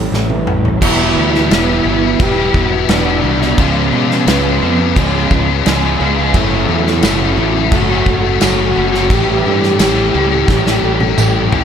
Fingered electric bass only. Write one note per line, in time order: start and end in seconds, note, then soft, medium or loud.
0.00 0.11 A1 medium
0.12 0.79 A1 medium
0.82 1.14 E1 loud
1.17 1.48 D2 medium
1.51 1.83 E1 loud
1.85 2.17 G1 medium
2.20 2.52 E1 loud
2.54 2.86 E1 medium
2.89 3.21 E1 medium
3.24 3.56 C2 medium
3.58 3.90 C#2 loud
3.92 4.24 B2 loud
4.27 4.59 C#2 medium
4.63 4.94 F2 medium
4.96 5.28 C#2 loud
5.31 5.63 C#2 medium
5.66 5.98 C#2 medium
6.01 6.32 C#2 medium
6.34 6.66 F#1 loud
6.68 7.00 E2 loud
7.03 7.35 F#1 loud
7.38 7.70 A1 loud
7.72 8.04 F#1 loud
8.06 8.38 F#1 medium
8.42 8.74 F#1 medium
8.77 9.08 F#1 medium
9.10 9.42 A1 loud
9.46 9.77 G2 medium
9.80 10.12 A1 medium
10.15 10.46 C#2 medium
10.48 10.80 A1 loud
10.83 11.15 A1 medium
11.18 11.50 A1 medium
11.52 11.64 A1 loud